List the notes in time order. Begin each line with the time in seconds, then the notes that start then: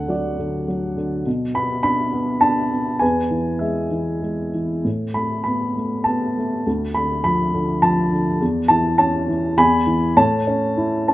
Already playing: D2 D3 A4 F#5
0.08 F#3 F#4 D5
0.39 D3
0.68 F#3
0.97 D3
1.26 B2
1.54 B3 B5
1.83 D4 B5
2.13 B3
2.41 D4 A5
2.72 B3
2.99 E2 B4 G#5
3.31 E3
3.59 G#3 G#4 E5
3.91 E3
4.22 G#3
4.54 E3
4.85 A2
5.14 A3 B5
5.44 B3 B5
5.76 A3
6.04 B3 A5
6.38 A3
6.67 D2
6.95 D3 B5
7.24 F3 B5
7.54 D3
7.82 F3 A5
8.12 D3
8.41 E2
8.68 E3 A5
8.98 C#4 A5
9.28 E3
9.57 E2 G#5 B5
9.87 E3
10.17 A2 C#5 A5
10.47 C#4
10.77 E4
11.08 C#4 A5